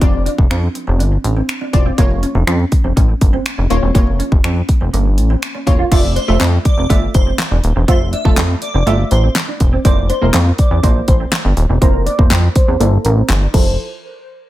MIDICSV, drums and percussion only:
0, 0, Header, 1, 2, 480
1, 0, Start_track
1, 0, Key_signature, -1, "major"
1, 0, Tempo, 491803
1, 15, Time_signature, 4, 2, 24, 8
1, 14149, End_track
2, 0, Start_track
2, 0, Title_t, "Drums"
2, 14, Note_on_c, 9, 42, 87
2, 15, Note_on_c, 9, 36, 100
2, 112, Note_off_c, 9, 36, 0
2, 112, Note_off_c, 9, 42, 0
2, 257, Note_on_c, 9, 42, 68
2, 355, Note_off_c, 9, 42, 0
2, 375, Note_on_c, 9, 36, 93
2, 473, Note_off_c, 9, 36, 0
2, 496, Note_on_c, 9, 42, 91
2, 497, Note_on_c, 9, 26, 117
2, 593, Note_off_c, 9, 42, 0
2, 594, Note_off_c, 9, 26, 0
2, 733, Note_on_c, 9, 42, 75
2, 831, Note_off_c, 9, 42, 0
2, 979, Note_on_c, 9, 42, 80
2, 1076, Note_off_c, 9, 42, 0
2, 1214, Note_on_c, 9, 42, 77
2, 1312, Note_off_c, 9, 42, 0
2, 1453, Note_on_c, 9, 42, 94
2, 1456, Note_on_c, 9, 26, 103
2, 1550, Note_off_c, 9, 42, 0
2, 1554, Note_off_c, 9, 26, 0
2, 1693, Note_on_c, 9, 42, 70
2, 1696, Note_on_c, 9, 36, 87
2, 1791, Note_off_c, 9, 42, 0
2, 1793, Note_off_c, 9, 36, 0
2, 1934, Note_on_c, 9, 36, 102
2, 1934, Note_on_c, 9, 42, 93
2, 2031, Note_off_c, 9, 42, 0
2, 2032, Note_off_c, 9, 36, 0
2, 2176, Note_on_c, 9, 42, 69
2, 2273, Note_off_c, 9, 42, 0
2, 2414, Note_on_c, 9, 42, 95
2, 2415, Note_on_c, 9, 26, 114
2, 2512, Note_off_c, 9, 42, 0
2, 2513, Note_off_c, 9, 26, 0
2, 2653, Note_on_c, 9, 42, 73
2, 2656, Note_on_c, 9, 36, 95
2, 2751, Note_off_c, 9, 42, 0
2, 2753, Note_off_c, 9, 36, 0
2, 2898, Note_on_c, 9, 36, 87
2, 2898, Note_on_c, 9, 42, 81
2, 2996, Note_off_c, 9, 36, 0
2, 2996, Note_off_c, 9, 42, 0
2, 3136, Note_on_c, 9, 42, 79
2, 3138, Note_on_c, 9, 36, 96
2, 3233, Note_off_c, 9, 42, 0
2, 3235, Note_off_c, 9, 36, 0
2, 3374, Note_on_c, 9, 42, 90
2, 3377, Note_on_c, 9, 26, 114
2, 3471, Note_off_c, 9, 42, 0
2, 3475, Note_off_c, 9, 26, 0
2, 3615, Note_on_c, 9, 42, 72
2, 3712, Note_off_c, 9, 42, 0
2, 3855, Note_on_c, 9, 36, 104
2, 3855, Note_on_c, 9, 42, 87
2, 3953, Note_off_c, 9, 36, 0
2, 3953, Note_off_c, 9, 42, 0
2, 4097, Note_on_c, 9, 42, 66
2, 4195, Note_off_c, 9, 42, 0
2, 4216, Note_on_c, 9, 36, 96
2, 4313, Note_off_c, 9, 36, 0
2, 4335, Note_on_c, 9, 42, 96
2, 4336, Note_on_c, 9, 26, 115
2, 4432, Note_off_c, 9, 42, 0
2, 4433, Note_off_c, 9, 26, 0
2, 4574, Note_on_c, 9, 42, 71
2, 4576, Note_on_c, 9, 36, 93
2, 4672, Note_off_c, 9, 42, 0
2, 4673, Note_off_c, 9, 36, 0
2, 4818, Note_on_c, 9, 42, 81
2, 4916, Note_off_c, 9, 42, 0
2, 5054, Note_on_c, 9, 42, 83
2, 5151, Note_off_c, 9, 42, 0
2, 5294, Note_on_c, 9, 42, 90
2, 5297, Note_on_c, 9, 26, 110
2, 5391, Note_off_c, 9, 42, 0
2, 5394, Note_off_c, 9, 26, 0
2, 5534, Note_on_c, 9, 42, 70
2, 5536, Note_on_c, 9, 36, 91
2, 5632, Note_off_c, 9, 42, 0
2, 5634, Note_off_c, 9, 36, 0
2, 5774, Note_on_c, 9, 36, 101
2, 5775, Note_on_c, 9, 42, 89
2, 5775, Note_on_c, 9, 49, 93
2, 5872, Note_off_c, 9, 36, 0
2, 5872, Note_off_c, 9, 42, 0
2, 5872, Note_off_c, 9, 49, 0
2, 6016, Note_on_c, 9, 42, 69
2, 6113, Note_off_c, 9, 42, 0
2, 6245, Note_on_c, 9, 38, 93
2, 6253, Note_on_c, 9, 42, 89
2, 6254, Note_on_c, 9, 39, 116
2, 6343, Note_off_c, 9, 38, 0
2, 6351, Note_off_c, 9, 42, 0
2, 6352, Note_off_c, 9, 39, 0
2, 6491, Note_on_c, 9, 42, 73
2, 6494, Note_on_c, 9, 36, 89
2, 6589, Note_off_c, 9, 42, 0
2, 6592, Note_off_c, 9, 36, 0
2, 6736, Note_on_c, 9, 36, 85
2, 6737, Note_on_c, 9, 42, 83
2, 6834, Note_off_c, 9, 36, 0
2, 6835, Note_off_c, 9, 42, 0
2, 6973, Note_on_c, 9, 42, 84
2, 6976, Note_on_c, 9, 36, 93
2, 7070, Note_off_c, 9, 42, 0
2, 7074, Note_off_c, 9, 36, 0
2, 7206, Note_on_c, 9, 38, 85
2, 7212, Note_on_c, 9, 42, 91
2, 7215, Note_on_c, 9, 39, 113
2, 7304, Note_off_c, 9, 38, 0
2, 7309, Note_off_c, 9, 42, 0
2, 7313, Note_off_c, 9, 39, 0
2, 7452, Note_on_c, 9, 42, 72
2, 7550, Note_off_c, 9, 42, 0
2, 7693, Note_on_c, 9, 36, 109
2, 7693, Note_on_c, 9, 42, 89
2, 7791, Note_off_c, 9, 36, 0
2, 7791, Note_off_c, 9, 42, 0
2, 7934, Note_on_c, 9, 42, 66
2, 8031, Note_off_c, 9, 42, 0
2, 8054, Note_on_c, 9, 36, 93
2, 8151, Note_off_c, 9, 36, 0
2, 8165, Note_on_c, 9, 38, 92
2, 8173, Note_on_c, 9, 42, 95
2, 8174, Note_on_c, 9, 39, 115
2, 8263, Note_off_c, 9, 38, 0
2, 8270, Note_off_c, 9, 42, 0
2, 8271, Note_off_c, 9, 39, 0
2, 8411, Note_on_c, 9, 42, 74
2, 8508, Note_off_c, 9, 42, 0
2, 8655, Note_on_c, 9, 42, 80
2, 8753, Note_off_c, 9, 42, 0
2, 8892, Note_on_c, 9, 42, 83
2, 8989, Note_off_c, 9, 42, 0
2, 9126, Note_on_c, 9, 38, 89
2, 9132, Note_on_c, 9, 42, 93
2, 9135, Note_on_c, 9, 39, 107
2, 9224, Note_off_c, 9, 38, 0
2, 9230, Note_off_c, 9, 42, 0
2, 9233, Note_off_c, 9, 39, 0
2, 9372, Note_on_c, 9, 42, 72
2, 9375, Note_on_c, 9, 36, 88
2, 9469, Note_off_c, 9, 42, 0
2, 9472, Note_off_c, 9, 36, 0
2, 9613, Note_on_c, 9, 36, 101
2, 9613, Note_on_c, 9, 42, 90
2, 9710, Note_off_c, 9, 42, 0
2, 9711, Note_off_c, 9, 36, 0
2, 9854, Note_on_c, 9, 42, 71
2, 9951, Note_off_c, 9, 42, 0
2, 10083, Note_on_c, 9, 38, 94
2, 10091, Note_on_c, 9, 42, 95
2, 10092, Note_on_c, 9, 39, 113
2, 10181, Note_off_c, 9, 38, 0
2, 10189, Note_off_c, 9, 42, 0
2, 10190, Note_off_c, 9, 39, 0
2, 10330, Note_on_c, 9, 42, 74
2, 10334, Note_on_c, 9, 36, 93
2, 10428, Note_off_c, 9, 42, 0
2, 10432, Note_off_c, 9, 36, 0
2, 10575, Note_on_c, 9, 42, 82
2, 10576, Note_on_c, 9, 36, 82
2, 10673, Note_off_c, 9, 42, 0
2, 10674, Note_off_c, 9, 36, 0
2, 10812, Note_on_c, 9, 42, 84
2, 10816, Note_on_c, 9, 36, 98
2, 10910, Note_off_c, 9, 42, 0
2, 10914, Note_off_c, 9, 36, 0
2, 11046, Note_on_c, 9, 38, 90
2, 11051, Note_on_c, 9, 42, 92
2, 11055, Note_on_c, 9, 39, 110
2, 11143, Note_off_c, 9, 38, 0
2, 11149, Note_off_c, 9, 42, 0
2, 11152, Note_off_c, 9, 39, 0
2, 11292, Note_on_c, 9, 42, 71
2, 11389, Note_off_c, 9, 42, 0
2, 11534, Note_on_c, 9, 36, 107
2, 11534, Note_on_c, 9, 42, 93
2, 11631, Note_off_c, 9, 42, 0
2, 11632, Note_off_c, 9, 36, 0
2, 11776, Note_on_c, 9, 42, 70
2, 11873, Note_off_c, 9, 42, 0
2, 11895, Note_on_c, 9, 36, 98
2, 11993, Note_off_c, 9, 36, 0
2, 12008, Note_on_c, 9, 38, 98
2, 12016, Note_on_c, 9, 42, 100
2, 12017, Note_on_c, 9, 39, 116
2, 12105, Note_off_c, 9, 38, 0
2, 12113, Note_off_c, 9, 42, 0
2, 12114, Note_off_c, 9, 39, 0
2, 12254, Note_on_c, 9, 42, 78
2, 12256, Note_on_c, 9, 36, 90
2, 12351, Note_off_c, 9, 42, 0
2, 12354, Note_off_c, 9, 36, 0
2, 12498, Note_on_c, 9, 42, 86
2, 12596, Note_off_c, 9, 42, 0
2, 12733, Note_on_c, 9, 42, 82
2, 12831, Note_off_c, 9, 42, 0
2, 12967, Note_on_c, 9, 38, 88
2, 12973, Note_on_c, 9, 42, 95
2, 12976, Note_on_c, 9, 39, 111
2, 13065, Note_off_c, 9, 38, 0
2, 13070, Note_off_c, 9, 42, 0
2, 13074, Note_off_c, 9, 39, 0
2, 13215, Note_on_c, 9, 36, 106
2, 13215, Note_on_c, 9, 49, 88
2, 13312, Note_off_c, 9, 36, 0
2, 13313, Note_off_c, 9, 49, 0
2, 14149, End_track
0, 0, End_of_file